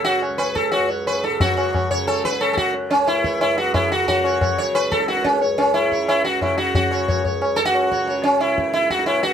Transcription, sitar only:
\new Staff \with { instrumentName = "Sitar" } { \time 4/4 \tempo 4 = 180 << { r8 cis''8 r4. cis''8 r4 | cis''8 cis''8 cis''8 r2 r8 | r4. cis''8 r2 | r8 cis''8 cis''8 r2 r8 |
cis''8 r4 cis''8 r2 | r8 cis''8 cis''8 cis''8 cis''8 r4 cis''8 | cis''8 r2. r8 | } \\ { fis'8 r8 b'8 a'8 fis'8 r8 b'8 a'8 | fis'4. cis''8 a'8 b'8 a'16. a'32 fis'8 | r8 cis'8 e'4 e'8 fis'8 e'8 fis'8 | fis'4. cis''8 b'8 a'8 fis'8 cis'8 |
r8 cis'8 e'4 e'8 fis'8 e'8 fis'8 | fis'4. r4 a'16 fis'4~ fis'16~ | fis'16 r16 cis'8 e'4 e'8 fis'8 e'8 fis'8 | } >> }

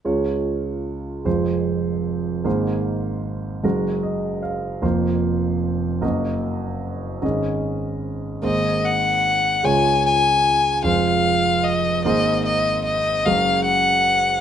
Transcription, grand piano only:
<<
  \new Staff \with { instrumentName = "Grand piano" } { \time 6/8 \key des \major \tempo 4. = 50 << { r2. | r2 ees''8 f''8 | r2. | r2. |
r2. | r2. | } \\ { <aes f' des''>4. <aes f' c''>4. | <bes aes' c''>4. <aes ges' bes'>4. | <bes f' c''>4. <bes ges' ees''>4. | <des' aes' ees''>4. <bes aes' c''>4. |
<aes f' des''>4 r8 <aes f' c''>4 r8 | <bes aes' c''>4 r8 <aes ges' bes'>4 r8 | } >> }
  \new Staff \with { instrumentName = "Grand piano" } { \clef bass \time 6/8 \key des \major <des, des>4. <f,, f,>4. | <aes,, aes,>4. <ges,, ges,>4. | <f,, f,>4. <ges,, ges,>4. | <aes,, aes,>4. <aes,, aes,>4. |
<des, des>4. <f,, f,>4. | <aes,, aes,>4. <ges,, ges,>4. | }
>>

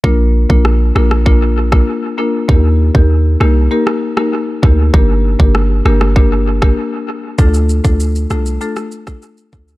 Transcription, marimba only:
\new Staff \with { instrumentName = "Marimba" } { \time 4/4 \key bes \major \tempo 4 = 98 <bes d' f' bes'>8. <bes d' f' bes'>8. <bes d' f' bes'>8 <bes d' f' bes'>8. <bes d' f' bes'>16 r8 <bes d' f' bes'>16 r16 | <bes ees' g' bes'>8. <bes ees' g' bes'>8. <bes ees' g' bes'>8 <bes ees' g' bes'>8. <bes ees' g' bes'>16 r8 <bes ees' g' bes'>16 r16 | <bes d' g' bes'>8. <bes d' g' bes'>8. <bes d' g' bes'>8 <bes d' g' bes'>8. <bes d' g' bes'>16 r4 | <a d' f' a'>8. <a d' f' a'>8. <a d' f' a'>8 <a d' f' a'>8. <a d' f' a'>16 r8 <a d' f' a'>16 r16 | }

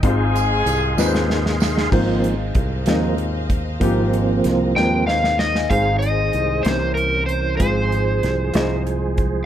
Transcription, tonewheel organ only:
\new Staff \with { instrumentName = "Tonewheel organ" } { \time 6/8 \key aes \major \tempo 4. = 63 <aes' ees'' f'' c'''>2. | <f bes c'>8 r4 <f bes c'>8 r4 | <f bes c'>4. <f bes c'>8 r4 | <ees aes aes' c''>4. <e des' bes'>4. |
<f aes aes'>2. | }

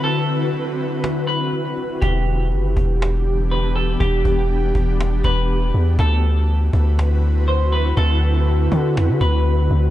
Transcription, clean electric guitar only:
\new Staff \with { instrumentName = "Clean electric guitar" } { \time 4/4 \key d \mixolydian \tempo 4 = 121 a'2~ a'8 b'4. | g'2. b'8 a'8 | g'2~ g'8 b'4. | a'2. c''8 b'8 |
a'2~ a'8 b'4. | }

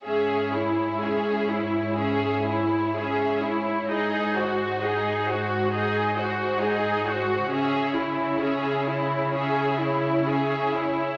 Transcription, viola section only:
\new Staff \with { instrumentName = "Viola section" } { \time 4/4 \key cis \minor \tempo 4 = 64 cis'8 e'8 cis'8 e'8 cis'8 e'8 cis'8 e'8 | dis'8 fis'8 dis'8 fis'8 dis'8 fis'8 dis'8 fis'8 | cis'8 e'8 cis'8 e'8 cis'8 e'8 cis'8 e'8 | }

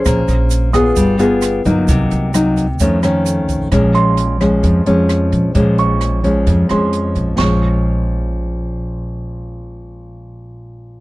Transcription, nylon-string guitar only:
\new Staff \with { instrumentName = "Nylon-string guitar" } { \clef bass \time 4/4 \key bes \minor \tempo 4 = 131 << { <des' aes' c''>4. <ces' f' aes'>4 <b f' aes'>4 <ges bes ees'>8~ | <ges bes ees'>4 <ges bes ees'>8 r8 <ees a cis'>8 <ees a cis'>4. | <f aes des'>4. <f aes des'>4 <f aes des'>4. | <f aes des'>4. <f aes des'>4 <f aes des'>4. |
<bes, f aes des'>1~ | <bes, f aes des'>1 | } \\ { bes2 g2 | c2 f,2 | bes,2 f,2 | bes,2 f,2 |
r1 | r1 | } >> }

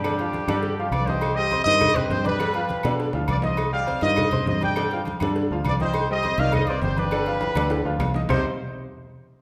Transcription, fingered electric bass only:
\new Staff \with { instrumentName = "Fingered electric bass" } { \clef bass \time 4/4 \key c \minor \tempo 4 = 203 g,4. g,4. c,4~ | c,4. g,4. g,4~ | g,4. b,4 d,8 c,4~ | c,4. g,4. g,4~ |
g,4. g,4 d,8 c,4~ | c,4. c,4. g,,4~ | g,,4. d,4 d,8 c,4 | c,8 r2. r8 | }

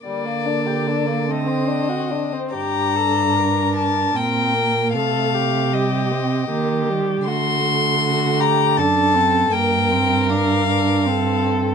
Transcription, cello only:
\new Staff \with { instrumentName = "Cello" } { \clef bass \time 3/4 \key g \minor \tempo 4 = 78 d2~ d8. r16 | g,2 bes,4 | c2 ees4 | d2 fis,4 |
g,2. | }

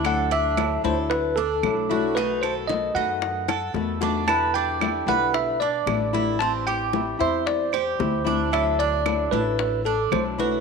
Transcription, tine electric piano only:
\new Staff \with { instrumentName = "Tine electric piano" } { \time 4/4 \key d \mixolydian \tempo 4 = 113 fis''8 e''4 c''8 b'8 a'4. | b'8 c''8 dis''8 fis''4. r4 | a''8 g''4 fis''8 e''8 d''4. | a''8 g''4 e''8 d''8 c''4. |
e''8 d''4 b'4 a'8 c''8 b'8 | }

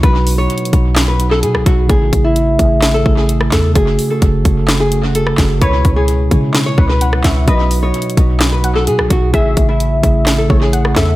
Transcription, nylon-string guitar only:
\new Staff \with { instrumentName = "Nylon-string guitar" } { \time 4/4 \key b \mixolydian \tempo 4 = 129 b'8. cis''4. b'8 a'16 gis'8 fis'8 | gis'8. e'4. a'8 gis'8. a'8 | gis'8. a'4. gis'8 fis'16 a'4 | b'8. gis'4. cis''8 b'8. cis''8 |
b'8. cis''4. b'8 a'16 gis'8 fis'8 | gis'8. e'4. a'8 gis'8. a'8 | }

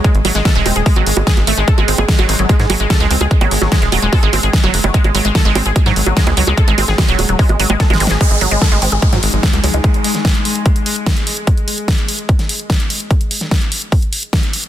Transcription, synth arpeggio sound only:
\new Staff \with { instrumentName = "Synth arpeggio sound" } { \clef bass \time 4/4 \tempo 4 = 147 gis16 r16 fis16 gis16 a'16 gis16 bis16 gis'16 gis16 fis16 r8 gis'16 r16 a16 gis16 | a'16 gis16 bis16 gis'16 r16 fis16 r16 fis16 gis16 gis16 fis16 gis16 a'16 gis16 bis16 gis'16 | r16 fis16 r16 fis16 gis16 gis16 fis16 gis16 a'16 gis16 bis16 gis'16 r16 fis16 r16 fis16 | gis16 gis16 fis16 gis16 a'16 gis16 bis16 gis'16 r16 fis16 r16 fis16 gis16 gis16 fis16 gis16 |
a'16 gis16 bis16 gis'16 r16 fis16 r16 fis16 gis16 gis16 fis16 gis16 a'16 gis16 bis16 gis'16 | gis16 gis16 fis16 gis16 a'16 gis16 bis16 gis'16 r16 fis16 r16 fis16 gis16 gis16 fis16 gis16 | r1 | r1 |
r1 | }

